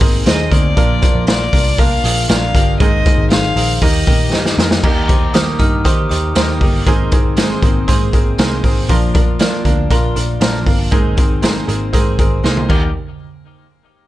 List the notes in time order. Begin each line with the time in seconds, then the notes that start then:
Already playing: D#3 A#3 C4 C5
0.00 G#1 C4 D#4 G#4 A#4 C5, kick, hi-hat pedal, open hi-hat
0.26 D#2 A#3 C4 D#4 G#4 A#4 C5 D#5, snare, hi-hat pedal, open hi-hat
0.51 D2 A#3 C4 D#4 G#4 A#4 C5 D5, kick, hi-hat pedal, open hi-hat
0.76 A#1 A#2 F3 A#3 D4 F4 A#4, kick, hi-hat pedal, open hi-hat
1.02 A#3 D4 F4 C5, kick, hi-hat pedal, open hi-hat
1.15 A#1
1.27 A#3 D4 F4 A#4 D5, snare, hi-hat pedal, open hi-hat
1.53 C2 A#3 D4 F4 A#4, kick, hi-hat pedal, open hi-hat
1.78 A#3 D4 F4 A#4 F5, kick, hi-hat pedal, open hi-hat
2.03 A#1 A#3 D4 F4 G#4 A#4, hi-hat pedal, open hi-hat
2.28 A#1 A#3 D4 F4 A#4 F5, snare, hi-hat pedal, open hi-hat
2.54 G1 A#3 D4 F4 G4 A#4, kick, hi-hat pedal, open hi-hat
2.80 G#1 D#3 G#3 A#3 C4 D#4 G#4 A#4 C5 D#5, kick, hi-hat pedal, open hi-hat
3.05 A#3 C4 D#4 G#4 A#4, kick, hi-hat pedal, open hi-hat
3.18 G#1
3.30 A#3 C4 D#4 G#4 C5 F5, snare, hi-hat pedal, open hi-hat
3.56 A#1 C4 D#4 G#4 A#4, hi-hat pedal, open hi-hat
3.81 D#2 D#3 G3 A#3 D#4 G4 A#4 D#5, kick, hi-hat pedal, open hi-hat
4.07 A#2 A#3 D#4 G4 A#4, kick, hi-hat pedal, open hi-hat
4.32 G2 G3 A#3 D#4 G4 A#4, snare
4.46 snare
4.58 F2 A#3 D#4 G4 A#4, snare
4.71 snare
4.83 D#2 D#3 G3 A#3 D#4 G4 A#4 A#5, kick, crash
5.08 D#4 G4 C5 D6, kick, closed hi-hat
5.34 D#3 G3 A#3 D#4 G4 A#4 D#6, snare, closed hi-hat
5.59 G2 A#3 D#4 G4 A#4 F6, kick, closed hi-hat
5.84 D#3 G3 A#3 D#4 G4 C5 D#6, kick, closed hi-hat
6.09 D#2 D#4 G4 C5 D#6, closed hi-hat
6.35 D#2 D#3 G3 A#3 D#4 G4 C5, snare, closed hi-hat
6.60 G1 A#3 D#4 G4 A#4, kick, open hi-hat
6.86 G#1 D#3 G#3 A#3 C4 D#4 G#4 A#4 C5, kick, closed hi-hat
7.11 C4 D#4 G#4 A#4 C5, kick, closed hi-hat
7.37 G#3 A#3 C4 D#4 G#4 C5, snare, closed hi-hat
7.62 G#1 C4 D#4 G#4 A#4 C5, kick, closed hi-hat
7.88 G#2 A#3 C4 D#4 G#4 C5, kick, closed hi-hat
8.13 G#1 C4 G#4 A#4, kick, closed hi-hat
8.38 C2 G#3 A#3 C4 D#4 G#4 A#4 C5, snare, closed hi-hat
8.63 G#1 C4 D#4 G#4 A#4 C5, kick, open hi-hat
8.89 A#1 A#2 F3 A#3 D4 F4 A#4, kick, closed hi-hat
9.15 A#3 D4 F4 A#4, kick, closed hi-hat
9.39 A#2 F3 A#3 D4 F4 A#4, snare, closed hi-hat
9.65 D2 A#3 D4 F4 A#4, kick, closed hi-hat
9.91 A#2 A#3 D4 F4 A#4, kick, closed hi-hat
10.16 A#1 D4 F4 A#4, closed hi-hat
10.40 A#1 A#2 F3 A#3 D4 F4 A#4, snare, closed hi-hat
10.66 G1 A#3 C4 D4 F4 A#4, kick, open hi-hat
10.79 D4
10.91 G#1 D#3 G#3 A#3 C4 D#4 G#4 A#4 C5, kick, closed hi-hat
11.17 C4 D#4 G#4 A#4 C5, kick, closed hi-hat
11.42 G#3 A#3 C4 D#4 G#4 A#4 C5, snare, closed hi-hat
11.67 G#1 C4 D#4 G#4 A#4 C5, closed hi-hat
11.93 G#2 A#3 C4 D#4 G#4 A#4 C5, kick, closed hi-hat
12.19 G#1 C4 G#4 A#4, kick, closed hi-hat
12.43 C2 G#3 A#3 C4 D#4 G#4 A#4 C5, snare
12.57 high tom
12.68 D#2 D#3 G3 A#3 D#4 G4 A#4, kick, crash